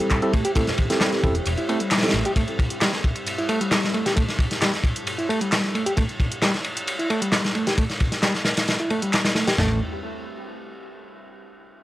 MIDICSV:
0, 0, Header, 1, 6, 480
1, 0, Start_track
1, 0, Key_signature, 0, "minor"
1, 0, Tempo, 451128
1, 594, Time_signature, 4, 2, 24, 8
1, 12589, End_track
2, 0, Start_track
2, 0, Title_t, "Ambient pad"
2, 0, Program_c, 0, 92
2, 0, Note_on_c, 0, 67, 86
2, 0, Note_on_c, 0, 72, 76
2, 0, Note_on_c, 0, 76, 76
2, 0, Note_on_c, 0, 79, 90
2, 2498, Note_off_c, 0, 79, 0
2, 2512, Note_on_c, 0, 81, 93
2, 6339, Note_off_c, 0, 81, 0
2, 6354, Note_on_c, 0, 83, 91
2, 10149, Note_off_c, 0, 72, 0
2, 10150, Note_off_c, 0, 76, 0
2, 10151, Note_off_c, 0, 67, 0
2, 10180, Note_off_c, 0, 83, 0
2, 12589, End_track
3, 0, Start_track
3, 0, Title_t, "Tine electric piano"
3, 0, Program_c, 1, 4
3, 0, Note_on_c, 1, 60, 84
3, 0, Note_on_c, 1, 64, 78
3, 0, Note_on_c, 1, 67, 79
3, 0, Note_on_c, 1, 69, 94
3, 208, Note_off_c, 1, 60, 0
3, 208, Note_off_c, 1, 64, 0
3, 209, Note_off_c, 1, 67, 0
3, 209, Note_off_c, 1, 69, 0
3, 238, Note_on_c, 1, 64, 87
3, 239, Note_on_c, 1, 60, 92
3, 239, Note_on_c, 1, 69, 105
3, 240, Note_on_c, 1, 67, 86
3, 338, Note_off_c, 1, 60, 0
3, 338, Note_off_c, 1, 64, 0
3, 338, Note_off_c, 1, 67, 0
3, 338, Note_off_c, 1, 69, 0
3, 591, Note_on_c, 1, 60, 81
3, 592, Note_on_c, 1, 67, 76
3, 592, Note_on_c, 1, 69, 91
3, 593, Note_on_c, 1, 64, 79
3, 702, Note_off_c, 1, 60, 0
3, 702, Note_off_c, 1, 64, 0
3, 702, Note_off_c, 1, 67, 0
3, 702, Note_off_c, 1, 69, 0
3, 959, Note_on_c, 1, 69, 101
3, 960, Note_on_c, 1, 60, 89
3, 960, Note_on_c, 1, 64, 81
3, 960, Note_on_c, 1, 67, 82
3, 1286, Note_off_c, 1, 60, 0
3, 1286, Note_off_c, 1, 64, 0
3, 1286, Note_off_c, 1, 67, 0
3, 1286, Note_off_c, 1, 69, 0
3, 1315, Note_on_c, 1, 60, 84
3, 1316, Note_on_c, 1, 64, 76
3, 1316, Note_on_c, 1, 67, 78
3, 1316, Note_on_c, 1, 69, 92
3, 1424, Note_off_c, 1, 60, 0
3, 1424, Note_off_c, 1, 64, 0
3, 1424, Note_off_c, 1, 67, 0
3, 1424, Note_off_c, 1, 69, 0
3, 1797, Note_on_c, 1, 60, 85
3, 1797, Note_on_c, 1, 64, 78
3, 1797, Note_on_c, 1, 67, 77
3, 1797, Note_on_c, 1, 69, 93
3, 1904, Note_off_c, 1, 60, 0
3, 1904, Note_off_c, 1, 69, 0
3, 1905, Note_off_c, 1, 64, 0
3, 1905, Note_off_c, 1, 67, 0
3, 2162, Note_on_c, 1, 60, 87
3, 2162, Note_on_c, 1, 64, 78
3, 2162, Note_on_c, 1, 67, 78
3, 2162, Note_on_c, 1, 69, 97
3, 2260, Note_off_c, 1, 60, 0
3, 2260, Note_off_c, 1, 64, 0
3, 2260, Note_off_c, 1, 67, 0
3, 2260, Note_off_c, 1, 69, 0
3, 12589, End_track
4, 0, Start_track
4, 0, Title_t, "Reed electric piano"
4, 0, Program_c, 2, 4
4, 0, Note_on_c, 2, 55, 75
4, 341, Note_off_c, 2, 55, 0
4, 351, Note_on_c, 2, 57, 76
4, 465, Note_off_c, 2, 57, 0
4, 476, Note_on_c, 2, 67, 100
4, 534, Note_off_c, 2, 67, 0
4, 591, Note_on_c, 2, 57, 82
4, 654, Note_off_c, 2, 57, 0
4, 1074, Note_on_c, 2, 55, 100
4, 1177, Note_off_c, 2, 55, 0
4, 1681, Note_on_c, 2, 64, 73
4, 1773, Note_off_c, 2, 64, 0
4, 1796, Note_on_c, 2, 57, 99
4, 1897, Note_off_c, 2, 57, 0
4, 1919, Note_on_c, 2, 55, 73
4, 2262, Note_off_c, 2, 55, 0
4, 2277, Note_on_c, 2, 57, 74
4, 2389, Note_off_c, 2, 57, 0
4, 2403, Note_on_c, 2, 67, 99
4, 2457, Note_off_c, 2, 67, 0
4, 2518, Note_on_c, 2, 57, 83
4, 2577, Note_off_c, 2, 57, 0
4, 2996, Note_on_c, 2, 55, 98
4, 3098, Note_off_c, 2, 55, 0
4, 3599, Note_on_c, 2, 64, 73
4, 3692, Note_off_c, 2, 64, 0
4, 3711, Note_on_c, 2, 57, 101
4, 3815, Note_off_c, 2, 57, 0
4, 3841, Note_on_c, 2, 55, 74
4, 4183, Note_off_c, 2, 55, 0
4, 4193, Note_on_c, 2, 57, 76
4, 4307, Note_off_c, 2, 57, 0
4, 4320, Note_on_c, 2, 67, 99
4, 4376, Note_off_c, 2, 67, 0
4, 4428, Note_on_c, 2, 57, 83
4, 4493, Note_off_c, 2, 57, 0
4, 4912, Note_on_c, 2, 55, 102
4, 5015, Note_off_c, 2, 55, 0
4, 5515, Note_on_c, 2, 64, 75
4, 5610, Note_off_c, 2, 64, 0
4, 5630, Note_on_c, 2, 57, 100
4, 5735, Note_off_c, 2, 57, 0
4, 5757, Note_on_c, 2, 55, 75
4, 6101, Note_off_c, 2, 55, 0
4, 6114, Note_on_c, 2, 57, 76
4, 6227, Note_off_c, 2, 57, 0
4, 6239, Note_on_c, 2, 67, 101
4, 6295, Note_off_c, 2, 67, 0
4, 6353, Note_on_c, 2, 57, 81
4, 6415, Note_off_c, 2, 57, 0
4, 6832, Note_on_c, 2, 55, 99
4, 6936, Note_off_c, 2, 55, 0
4, 7440, Note_on_c, 2, 64, 74
4, 7533, Note_off_c, 2, 64, 0
4, 7556, Note_on_c, 2, 57, 100
4, 7658, Note_off_c, 2, 57, 0
4, 7681, Note_on_c, 2, 55, 75
4, 8023, Note_off_c, 2, 55, 0
4, 8032, Note_on_c, 2, 57, 75
4, 8146, Note_off_c, 2, 57, 0
4, 8162, Note_on_c, 2, 67, 100
4, 8217, Note_off_c, 2, 67, 0
4, 8276, Note_on_c, 2, 57, 81
4, 8337, Note_off_c, 2, 57, 0
4, 8756, Note_on_c, 2, 55, 97
4, 8857, Note_off_c, 2, 55, 0
4, 9361, Note_on_c, 2, 64, 72
4, 9453, Note_off_c, 2, 64, 0
4, 9475, Note_on_c, 2, 57, 97
4, 9577, Note_off_c, 2, 57, 0
4, 9602, Note_on_c, 2, 55, 76
4, 9943, Note_off_c, 2, 55, 0
4, 9957, Note_on_c, 2, 57, 75
4, 10069, Note_off_c, 2, 57, 0
4, 10079, Note_on_c, 2, 67, 101
4, 10135, Note_off_c, 2, 67, 0
4, 10195, Note_on_c, 2, 57, 94
4, 10417, Note_off_c, 2, 57, 0
4, 12589, End_track
5, 0, Start_track
5, 0, Title_t, "Picked electric bass"
5, 0, Program_c, 3, 34
5, 1316, Note_on_c, 3, 28, 101
5, 1465, Note_off_c, 3, 28, 0
5, 1557, Note_on_c, 3, 28, 91
5, 1632, Note_off_c, 3, 28, 0
5, 2277, Note_on_c, 3, 33, 91
5, 2351, Note_off_c, 3, 33, 0
5, 10195, Note_on_c, 3, 33, 94
5, 10417, Note_off_c, 3, 33, 0
5, 12589, End_track
6, 0, Start_track
6, 0, Title_t, "Drums"
6, 111, Note_on_c, 9, 39, 112
6, 111, Note_on_c, 9, 42, 54
6, 112, Note_on_c, 9, 51, 62
6, 115, Note_on_c, 9, 36, 83
6, 217, Note_off_c, 9, 39, 0
6, 217, Note_off_c, 9, 42, 0
6, 219, Note_off_c, 9, 51, 0
6, 222, Note_off_c, 9, 36, 0
6, 235, Note_on_c, 9, 42, 32
6, 342, Note_off_c, 9, 42, 0
6, 354, Note_on_c, 9, 51, 74
6, 357, Note_on_c, 9, 36, 96
6, 460, Note_off_c, 9, 51, 0
6, 463, Note_off_c, 9, 36, 0
6, 476, Note_on_c, 9, 42, 65
6, 582, Note_off_c, 9, 42, 0
6, 589, Note_on_c, 9, 42, 52
6, 594, Note_on_c, 9, 36, 104
6, 598, Note_on_c, 9, 51, 94
6, 696, Note_off_c, 9, 42, 0
6, 701, Note_off_c, 9, 36, 0
6, 705, Note_off_c, 9, 51, 0
6, 716, Note_on_c, 9, 42, 29
6, 717, Note_on_c, 9, 38, 48
6, 731, Note_on_c, 9, 64, 78
6, 823, Note_off_c, 9, 42, 0
6, 824, Note_off_c, 9, 38, 0
6, 826, Note_on_c, 9, 51, 73
6, 837, Note_on_c, 9, 36, 89
6, 838, Note_off_c, 9, 64, 0
6, 843, Note_on_c, 9, 63, 60
6, 932, Note_off_c, 9, 51, 0
6, 943, Note_off_c, 9, 36, 0
6, 950, Note_off_c, 9, 63, 0
6, 958, Note_on_c, 9, 42, 61
6, 964, Note_on_c, 9, 38, 50
6, 1064, Note_off_c, 9, 42, 0
6, 1070, Note_off_c, 9, 38, 0
6, 1071, Note_on_c, 9, 38, 120
6, 1071, Note_on_c, 9, 39, 105
6, 1071, Note_on_c, 9, 42, 51
6, 1077, Note_on_c, 9, 51, 82
6, 1178, Note_off_c, 9, 38, 0
6, 1178, Note_off_c, 9, 39, 0
6, 1178, Note_off_c, 9, 42, 0
6, 1183, Note_off_c, 9, 51, 0
6, 1196, Note_on_c, 9, 42, 30
6, 1197, Note_on_c, 9, 38, 47
6, 1303, Note_off_c, 9, 38, 0
6, 1303, Note_off_c, 9, 42, 0
6, 1309, Note_on_c, 9, 63, 77
6, 1315, Note_on_c, 9, 36, 95
6, 1316, Note_on_c, 9, 51, 65
6, 1321, Note_on_c, 9, 64, 78
6, 1415, Note_off_c, 9, 63, 0
6, 1421, Note_off_c, 9, 36, 0
6, 1422, Note_off_c, 9, 51, 0
6, 1427, Note_off_c, 9, 64, 0
6, 1436, Note_on_c, 9, 42, 62
6, 1542, Note_off_c, 9, 42, 0
6, 1549, Note_on_c, 9, 42, 52
6, 1560, Note_on_c, 9, 51, 89
6, 1656, Note_off_c, 9, 42, 0
6, 1667, Note_off_c, 9, 51, 0
6, 1676, Note_on_c, 9, 42, 31
6, 1783, Note_off_c, 9, 42, 0
6, 1797, Note_on_c, 9, 51, 64
6, 1903, Note_off_c, 9, 51, 0
6, 1916, Note_on_c, 9, 42, 61
6, 2023, Note_off_c, 9, 42, 0
6, 2030, Note_on_c, 9, 39, 111
6, 2030, Note_on_c, 9, 42, 52
6, 2030, Note_on_c, 9, 51, 67
6, 2038, Note_on_c, 9, 38, 84
6, 2103, Note_off_c, 9, 38, 0
6, 2103, Note_on_c, 9, 38, 88
6, 2108, Note_off_c, 9, 51, 0
6, 2108, Note_on_c, 9, 51, 68
6, 2137, Note_off_c, 9, 39, 0
6, 2137, Note_off_c, 9, 42, 0
6, 2156, Note_off_c, 9, 38, 0
6, 2156, Note_on_c, 9, 38, 81
6, 2157, Note_on_c, 9, 42, 31
6, 2158, Note_off_c, 9, 51, 0
6, 2158, Note_on_c, 9, 51, 70
6, 2222, Note_off_c, 9, 38, 0
6, 2222, Note_on_c, 9, 38, 94
6, 2223, Note_off_c, 9, 51, 0
6, 2223, Note_on_c, 9, 51, 67
6, 2264, Note_off_c, 9, 42, 0
6, 2278, Note_off_c, 9, 51, 0
6, 2278, Note_on_c, 9, 51, 66
6, 2329, Note_off_c, 9, 38, 0
6, 2384, Note_off_c, 9, 51, 0
6, 2396, Note_on_c, 9, 42, 62
6, 2503, Note_off_c, 9, 42, 0
6, 2510, Note_on_c, 9, 42, 50
6, 2511, Note_on_c, 9, 36, 98
6, 2516, Note_on_c, 9, 51, 84
6, 2617, Note_off_c, 9, 36, 0
6, 2617, Note_off_c, 9, 42, 0
6, 2622, Note_off_c, 9, 51, 0
6, 2636, Note_on_c, 9, 42, 28
6, 2742, Note_off_c, 9, 42, 0
6, 2756, Note_on_c, 9, 36, 94
6, 2760, Note_on_c, 9, 51, 68
6, 2862, Note_off_c, 9, 36, 0
6, 2866, Note_off_c, 9, 51, 0
6, 2877, Note_on_c, 9, 42, 59
6, 2983, Note_off_c, 9, 42, 0
6, 2991, Note_on_c, 9, 39, 105
6, 2991, Note_on_c, 9, 42, 50
6, 2991, Note_on_c, 9, 51, 88
6, 2998, Note_on_c, 9, 38, 116
6, 3097, Note_off_c, 9, 51, 0
6, 3098, Note_off_c, 9, 39, 0
6, 3098, Note_off_c, 9, 42, 0
6, 3104, Note_off_c, 9, 38, 0
6, 3118, Note_on_c, 9, 38, 51
6, 3119, Note_on_c, 9, 42, 30
6, 3224, Note_off_c, 9, 38, 0
6, 3225, Note_off_c, 9, 42, 0
6, 3236, Note_on_c, 9, 36, 89
6, 3237, Note_on_c, 9, 51, 62
6, 3343, Note_off_c, 9, 36, 0
6, 3343, Note_off_c, 9, 51, 0
6, 3355, Note_on_c, 9, 51, 47
6, 3359, Note_on_c, 9, 42, 59
6, 3461, Note_off_c, 9, 51, 0
6, 3466, Note_off_c, 9, 42, 0
6, 3474, Note_on_c, 9, 42, 51
6, 3482, Note_on_c, 9, 51, 86
6, 3581, Note_off_c, 9, 42, 0
6, 3589, Note_off_c, 9, 51, 0
6, 3601, Note_on_c, 9, 42, 30
6, 3708, Note_off_c, 9, 42, 0
6, 3710, Note_on_c, 9, 51, 73
6, 3817, Note_off_c, 9, 51, 0
6, 3841, Note_on_c, 9, 42, 58
6, 3947, Note_off_c, 9, 42, 0
6, 3952, Note_on_c, 9, 38, 127
6, 3955, Note_on_c, 9, 39, 107
6, 3955, Note_on_c, 9, 42, 51
6, 3959, Note_on_c, 9, 51, 94
6, 4059, Note_off_c, 9, 38, 0
6, 4062, Note_off_c, 9, 39, 0
6, 4062, Note_off_c, 9, 42, 0
6, 4066, Note_off_c, 9, 51, 0
6, 4080, Note_on_c, 9, 42, 30
6, 4087, Note_on_c, 9, 38, 56
6, 4186, Note_off_c, 9, 42, 0
6, 4193, Note_on_c, 9, 51, 62
6, 4194, Note_off_c, 9, 38, 0
6, 4300, Note_off_c, 9, 51, 0
6, 4320, Note_on_c, 9, 42, 62
6, 4322, Note_on_c, 9, 38, 48
6, 4426, Note_off_c, 9, 42, 0
6, 4428, Note_off_c, 9, 38, 0
6, 4433, Note_on_c, 9, 42, 50
6, 4439, Note_on_c, 9, 36, 110
6, 4442, Note_on_c, 9, 51, 79
6, 4540, Note_off_c, 9, 42, 0
6, 4546, Note_off_c, 9, 36, 0
6, 4548, Note_off_c, 9, 51, 0
6, 4560, Note_on_c, 9, 42, 29
6, 4561, Note_on_c, 9, 38, 46
6, 4666, Note_off_c, 9, 42, 0
6, 4667, Note_off_c, 9, 38, 0
6, 4668, Note_on_c, 9, 36, 104
6, 4682, Note_on_c, 9, 51, 71
6, 4775, Note_off_c, 9, 36, 0
6, 4788, Note_off_c, 9, 51, 0
6, 4798, Note_on_c, 9, 42, 59
6, 4804, Note_on_c, 9, 38, 44
6, 4904, Note_off_c, 9, 42, 0
6, 4911, Note_off_c, 9, 38, 0
6, 4911, Note_on_c, 9, 39, 100
6, 4911, Note_on_c, 9, 42, 50
6, 4912, Note_on_c, 9, 51, 93
6, 4918, Note_on_c, 9, 38, 111
6, 5018, Note_off_c, 9, 39, 0
6, 5018, Note_off_c, 9, 42, 0
6, 5019, Note_off_c, 9, 51, 0
6, 5024, Note_off_c, 9, 38, 0
6, 5038, Note_on_c, 9, 38, 48
6, 5038, Note_on_c, 9, 42, 30
6, 5144, Note_off_c, 9, 38, 0
6, 5145, Note_off_c, 9, 42, 0
6, 5146, Note_on_c, 9, 36, 100
6, 5152, Note_on_c, 9, 51, 72
6, 5252, Note_off_c, 9, 36, 0
6, 5259, Note_off_c, 9, 51, 0
6, 5277, Note_on_c, 9, 42, 59
6, 5384, Note_off_c, 9, 42, 0
6, 5393, Note_on_c, 9, 42, 50
6, 5393, Note_on_c, 9, 51, 82
6, 5499, Note_off_c, 9, 42, 0
6, 5500, Note_off_c, 9, 51, 0
6, 5519, Note_on_c, 9, 42, 30
6, 5625, Note_off_c, 9, 42, 0
6, 5639, Note_on_c, 9, 51, 68
6, 5745, Note_off_c, 9, 51, 0
6, 5758, Note_on_c, 9, 42, 60
6, 5864, Note_off_c, 9, 42, 0
6, 5872, Note_on_c, 9, 39, 105
6, 5872, Note_on_c, 9, 42, 52
6, 5879, Note_on_c, 9, 38, 114
6, 5880, Note_on_c, 9, 51, 84
6, 5978, Note_off_c, 9, 39, 0
6, 5978, Note_off_c, 9, 42, 0
6, 5985, Note_off_c, 9, 38, 0
6, 5986, Note_off_c, 9, 51, 0
6, 6000, Note_on_c, 9, 38, 39
6, 6000, Note_on_c, 9, 42, 29
6, 6106, Note_off_c, 9, 42, 0
6, 6107, Note_off_c, 9, 38, 0
6, 6117, Note_on_c, 9, 51, 67
6, 6223, Note_off_c, 9, 51, 0
6, 6239, Note_on_c, 9, 42, 60
6, 6345, Note_off_c, 9, 42, 0
6, 6353, Note_on_c, 9, 42, 53
6, 6358, Note_on_c, 9, 36, 113
6, 6360, Note_on_c, 9, 51, 86
6, 6459, Note_off_c, 9, 42, 0
6, 6465, Note_off_c, 9, 36, 0
6, 6466, Note_off_c, 9, 51, 0
6, 6481, Note_on_c, 9, 42, 29
6, 6587, Note_off_c, 9, 42, 0
6, 6594, Note_on_c, 9, 36, 87
6, 6595, Note_on_c, 9, 51, 64
6, 6700, Note_off_c, 9, 36, 0
6, 6702, Note_off_c, 9, 51, 0
6, 6720, Note_on_c, 9, 42, 62
6, 6827, Note_off_c, 9, 42, 0
6, 6832, Note_on_c, 9, 38, 121
6, 6834, Note_on_c, 9, 51, 89
6, 6835, Note_on_c, 9, 39, 101
6, 6835, Note_on_c, 9, 42, 52
6, 6939, Note_off_c, 9, 38, 0
6, 6940, Note_off_c, 9, 51, 0
6, 6941, Note_off_c, 9, 39, 0
6, 6941, Note_off_c, 9, 42, 0
6, 6961, Note_on_c, 9, 42, 31
6, 6965, Note_on_c, 9, 38, 45
6, 7067, Note_off_c, 9, 42, 0
6, 7069, Note_on_c, 9, 51, 83
6, 7071, Note_off_c, 9, 38, 0
6, 7175, Note_off_c, 9, 51, 0
6, 7201, Note_on_c, 9, 42, 62
6, 7307, Note_off_c, 9, 42, 0
6, 7315, Note_on_c, 9, 42, 51
6, 7316, Note_on_c, 9, 51, 85
6, 7421, Note_off_c, 9, 42, 0
6, 7422, Note_off_c, 9, 51, 0
6, 7442, Note_on_c, 9, 42, 31
6, 7548, Note_off_c, 9, 42, 0
6, 7554, Note_on_c, 9, 51, 66
6, 7660, Note_off_c, 9, 51, 0
6, 7681, Note_on_c, 9, 42, 61
6, 7788, Note_off_c, 9, 42, 0
6, 7790, Note_on_c, 9, 38, 123
6, 7793, Note_on_c, 9, 39, 102
6, 7793, Note_on_c, 9, 42, 51
6, 7795, Note_on_c, 9, 51, 84
6, 7896, Note_off_c, 9, 38, 0
6, 7900, Note_off_c, 9, 39, 0
6, 7900, Note_off_c, 9, 42, 0
6, 7902, Note_off_c, 9, 51, 0
6, 7922, Note_on_c, 9, 42, 30
6, 7925, Note_on_c, 9, 38, 60
6, 8028, Note_off_c, 9, 42, 0
6, 8030, Note_on_c, 9, 51, 66
6, 8032, Note_off_c, 9, 38, 0
6, 8137, Note_off_c, 9, 51, 0
6, 8160, Note_on_c, 9, 42, 61
6, 8164, Note_on_c, 9, 38, 52
6, 8267, Note_off_c, 9, 42, 0
6, 8270, Note_off_c, 9, 38, 0
6, 8275, Note_on_c, 9, 42, 56
6, 8275, Note_on_c, 9, 51, 86
6, 8276, Note_on_c, 9, 36, 102
6, 8381, Note_off_c, 9, 42, 0
6, 8382, Note_off_c, 9, 36, 0
6, 8382, Note_off_c, 9, 51, 0
6, 8402, Note_on_c, 9, 42, 31
6, 8404, Note_on_c, 9, 38, 42
6, 8508, Note_off_c, 9, 42, 0
6, 8510, Note_off_c, 9, 38, 0
6, 8513, Note_on_c, 9, 51, 72
6, 8520, Note_on_c, 9, 36, 99
6, 8619, Note_off_c, 9, 51, 0
6, 8626, Note_off_c, 9, 36, 0
6, 8638, Note_on_c, 9, 38, 50
6, 8640, Note_on_c, 9, 42, 64
6, 8745, Note_off_c, 9, 38, 0
6, 8747, Note_off_c, 9, 42, 0
6, 8753, Note_on_c, 9, 38, 106
6, 8754, Note_on_c, 9, 39, 102
6, 8754, Note_on_c, 9, 42, 53
6, 8756, Note_on_c, 9, 51, 90
6, 8859, Note_off_c, 9, 38, 0
6, 8860, Note_off_c, 9, 39, 0
6, 8860, Note_off_c, 9, 42, 0
6, 8863, Note_off_c, 9, 51, 0
6, 8880, Note_on_c, 9, 42, 31
6, 8881, Note_on_c, 9, 38, 56
6, 8987, Note_off_c, 9, 38, 0
6, 8987, Note_off_c, 9, 42, 0
6, 8987, Note_on_c, 9, 38, 104
6, 8993, Note_on_c, 9, 51, 78
6, 9094, Note_off_c, 9, 38, 0
6, 9100, Note_off_c, 9, 51, 0
6, 9119, Note_on_c, 9, 42, 64
6, 9122, Note_on_c, 9, 51, 89
6, 9125, Note_on_c, 9, 38, 113
6, 9225, Note_off_c, 9, 42, 0
6, 9228, Note_off_c, 9, 51, 0
6, 9231, Note_off_c, 9, 38, 0
6, 9234, Note_on_c, 9, 42, 52
6, 9241, Note_on_c, 9, 51, 69
6, 9242, Note_on_c, 9, 38, 110
6, 9340, Note_off_c, 9, 42, 0
6, 9347, Note_off_c, 9, 51, 0
6, 9349, Note_off_c, 9, 38, 0
6, 9361, Note_on_c, 9, 42, 32
6, 9467, Note_off_c, 9, 42, 0
6, 9471, Note_on_c, 9, 51, 73
6, 9578, Note_off_c, 9, 51, 0
6, 9600, Note_on_c, 9, 42, 64
6, 9706, Note_off_c, 9, 42, 0
6, 9714, Note_on_c, 9, 39, 105
6, 9714, Note_on_c, 9, 42, 54
6, 9716, Note_on_c, 9, 51, 79
6, 9723, Note_on_c, 9, 38, 99
6, 9821, Note_off_c, 9, 39, 0
6, 9821, Note_off_c, 9, 42, 0
6, 9822, Note_off_c, 9, 51, 0
6, 9830, Note_off_c, 9, 38, 0
6, 9838, Note_on_c, 9, 38, 109
6, 9841, Note_on_c, 9, 42, 32
6, 9844, Note_on_c, 9, 51, 81
6, 9944, Note_off_c, 9, 38, 0
6, 9948, Note_off_c, 9, 42, 0
6, 9950, Note_off_c, 9, 51, 0
6, 9950, Note_on_c, 9, 38, 92
6, 9956, Note_on_c, 9, 51, 70
6, 10056, Note_off_c, 9, 38, 0
6, 10062, Note_off_c, 9, 51, 0
6, 10081, Note_on_c, 9, 42, 63
6, 10084, Note_on_c, 9, 38, 97
6, 10087, Note_on_c, 9, 51, 80
6, 10187, Note_off_c, 9, 42, 0
6, 10191, Note_off_c, 9, 38, 0
6, 10193, Note_off_c, 9, 51, 0
6, 10197, Note_on_c, 9, 38, 102
6, 10197, Note_on_c, 9, 43, 104
6, 10197, Note_on_c, 9, 52, 85
6, 10304, Note_off_c, 9, 38, 0
6, 10304, Note_off_c, 9, 43, 0
6, 10304, Note_off_c, 9, 52, 0
6, 12589, End_track
0, 0, End_of_file